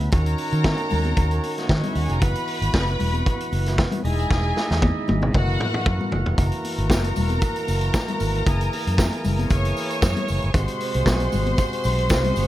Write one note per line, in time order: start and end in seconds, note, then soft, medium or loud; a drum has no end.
0.00 0.11 C#3 medium
0.00 0.11 B3 medium
0.00 closed hi-hat soft
0.12 0.33 D#2 loud
0.12 2.19 D#3 medium
0.12 2.20 C#4 medium
0.12 4.00 F#4 medium
0.12 1.53 A#4 loud
0.12 1.53 A#5 loud
0.12 kick loud
0.12 closed hi-hat medium
0.12 muted conga soft
0.26 closed hi-hat soft
0.38 open hi-hat medium
0.52 0.73 D#3 loud
0.52 closed hi-hat soft
0.64 kick loud
0.64 snare loud
0.64 muted conga soft
0.64 high conga medium
0.77 closed hi-hat soft
0.90 1.12 D#2 medium
0.90 open hi-hat medium
0.90 low conga medium
1.05 closed hi-hat soft
1.05 high conga medium
1.17 1.38 D#2 loud
1.17 kick loud
1.17 closed hi-hat medium
1.17 muted conga soft
1.31 closed hi-hat soft
1.43 open hi-hat medium
1.43 muted conga soft
1.58 1.69 B3 medium
1.58 1.69 B4 medium
1.58 snare soft
1.58 closed hi-hat soft
1.69 1.80 D#3 medium
1.69 1.78 C#4 medium
1.69 1.78 C#5 medium
1.69 kick loud
1.69 snare medium
1.69 muted conga soft
1.77 1.86 D#4 medium
1.77 1.87 D#5 medium
1.83 1.96 E4 medium
1.83 1.96 E5 medium
1.83 closed hi-hat soft
1.83 high conga medium
1.83 low conga medium
1.95 2.06 D#2 medium
1.95 2.04 F#4 medium
1.95 2.04 F#5 medium
1.95 open hi-hat medium
2.04 2.13 G#4 medium
2.04 2.13 G#5 medium
2.09 2.22 F1 medium
2.09 2.21 A#4 medium
2.09 2.22 A#5 medium
2.09 closed hi-hat soft
2.21 2.33 F#1 loud
2.21 4.03 E3 medium
2.21 4.03 B3 medium
2.21 3.75 B4 loud
2.21 3.75 B5 loud
2.21 kick loud
2.21 closed hi-hat medium
2.35 closed hi-hat soft
2.48 open hi-hat medium
2.61 2.71 G#1 medium
2.61 closed hi-hat soft
2.74 2.94 F#1 medium
2.74 kick loud
2.74 snare loud
2.74 muted conga soft
2.74 high conga medium
2.88 closed hi-hat soft
2.99 3.21 E1 medium
2.99 open hi-hat medium
2.99 low conga medium
3.14 closed hi-hat soft
3.14 high conga medium
3.26 kick loud
3.26 closed hi-hat soft
3.40 closed hi-hat soft
3.52 3.83 F#1 medium
3.52 open hi-hat medium
3.52 muted conga soft
3.66 snare soft
3.66 closed hi-hat medium
3.78 kick loud
3.78 snare medium
3.78 muted conga soft
3.92 closed hi-hat soft
3.92 high conga medium
3.92 low conga medium
4.04 4.25 E1 loud
4.04 5.33 G#3 medium
4.04 5.33 D#4 medium
4.04 5.33 E4 medium
4.04 5.06 G#4 medium
4.04 5.06 G#5 loud
4.04 open hi-hat medium
4.04 muted conga soft
4.19 closed hi-hat soft
4.30 4.51 E1 loud
4.30 kick loud
4.30 snare medium
4.57 snare medium
4.71 4.91 E2 medium
4.71 snare medium
4.82 kick loud
4.82 high tom medium
4.82 high conga medium
5.08 5.29 G#1 loud
5.08 high tom medium
5.08 low conga medium
5.22 mid tom medium
5.22 high conga medium
5.33 5.55 F#1 loud
5.33 6.37 E3 medium
5.33 6.37 A#3 medium
5.33 6.10 F#4 loud
5.33 6.37 F#4 medium
5.33 6.10 F#5 loud
5.33 kick medium
5.33 mid tom medium
5.33 muted conga soft
5.60 mid tom medium
5.60 high conga medium
5.74 mid tom medium
5.86 5.97 F#2 loud
5.86 kick loud
5.86 mid tom medium
5.86 muted conga soft
6.01 high conga medium
6.01 low conga medium
6.12 6.24 F#1 loud
6.12 floor tom loud
6.26 6.36 F1 medium
6.26 floor tom medium
6.37 6.49 F#1 loud
6.37 10.50 E3 medium
6.37 10.50 A#3 medium
6.37 8.44 F#4 medium
6.37 9.46 A#4 medium
6.37 9.46 A#5 loud
6.37 kick loud
6.37 closed hi-hat medium
6.37 tambourine soft
6.37 muted conga soft
6.52 closed hi-hat soft
6.64 open hi-hat medium
6.64 muted conga soft
6.78 6.90 G#1 medium
6.78 closed hi-hat soft
6.90 7.11 F#1 loud
6.90 kick loud
6.90 snare loud
6.90 tambourine medium
6.90 muted conga soft
6.90 high conga medium
7.04 closed hi-hat soft
7.16 7.38 E1 loud
7.16 open hi-hat medium
7.16 tambourine medium
7.16 muted conga soft
7.16 low conga medium
7.30 closed hi-hat soft
7.30 high conga medium
7.41 kick loud
7.41 closed hi-hat medium
7.41 tambourine medium
7.41 muted conga soft
7.56 closed hi-hat soft
7.67 7.89 F#1 loud
7.67 open hi-hat medium
7.67 tambourine medium
7.67 muted conga soft
7.81 closed hi-hat soft
7.94 kick loud
7.94 snare loud
7.94 tambourine medium
7.94 muted conga soft
8.08 closed hi-hat soft
8.08 high conga medium
8.08 low conga medium
8.20 8.41 G#1 medium
8.20 open hi-hat medium
8.20 tambourine medium
8.20 muted conga soft
8.35 closed hi-hat soft
8.47 8.67 F#1 loud
8.47 10.52 G#4 medium
8.47 kick loud
8.47 closed hi-hat medium
8.61 closed hi-hat soft
8.73 open hi-hat medium
8.73 muted conga soft
8.87 9.07 F#2 loud
8.87 closed hi-hat medium
8.98 kick loud
8.98 snare loud
8.98 tambourine loud
8.98 muted conga soft
8.98 high conga medium
9.13 closed hi-hat soft
9.24 9.45 F#1 loud
9.24 open hi-hat medium
9.24 tambourine medium
9.24 muted conga soft
9.24 low conga medium
9.39 closed hi-hat soft
9.39 high conga medium
9.50 9.71 F#1 medium
9.50 10.52 C#5 medium
9.50 10.52 C#6 medium
9.50 kick loud
9.50 closed hi-hat medium
9.50 tambourine medium
9.65 closed hi-hat soft
9.77 open hi-hat medium
9.77 tambourine medium
9.90 closed hi-hat medium
10.02 10.13 F#2 loud
10.02 kick loud
10.02 snare medium
10.02 tambourine medium
10.02 muted conga soft
10.17 closed hi-hat soft
10.17 high conga medium
10.17 low conga medium
10.28 10.40 F#1 medium
10.28 open hi-hat medium
10.28 tambourine medium
10.28 muted conga soft
10.42 10.53 G1 medium
10.42 closed hi-hat soft
10.54 10.65 G#1 loud
10.54 12.47 C3 medium
10.54 12.47 G#3 medium
10.54 12.47 F#4 medium
10.54 12.47 C5 loud
10.54 12.47 C6 loud
10.54 kick loud
10.54 closed hi-hat medium
10.54 tambourine soft
10.68 closed hi-hat soft
10.80 open hi-hat medium
10.80 muted conga soft
10.94 11.04 C2 medium
10.94 closed hi-hat medium
11.06 11.27 B1 loud
11.06 kick loud
11.06 snare loud
11.06 tambourine loud
11.06 muted conga soft
11.06 high conga medium
11.20 closed hi-hat soft
11.32 11.53 G#1 medium
11.32 open hi-hat medium
11.32 tambourine medium
11.32 low conga medium
11.47 closed hi-hat soft
11.47 high conga medium
11.58 kick medium
11.58 closed hi-hat medium
11.58 tambourine medium
11.73 closed hi-hat soft
11.84 12.11 B1 loud
11.84 open hi-hat medium
11.84 tambourine medium
11.99 closed hi-hat soft
12.09 12.31 C2 loud
12.09 kick loud
12.09 snare loud
12.09 tambourine loud
12.24 closed hi-hat soft
12.24 high conga medium
12.24 low conga medium
12.36 12.47 G1 medium
12.36 open hi-hat medium
12.36 tambourine medium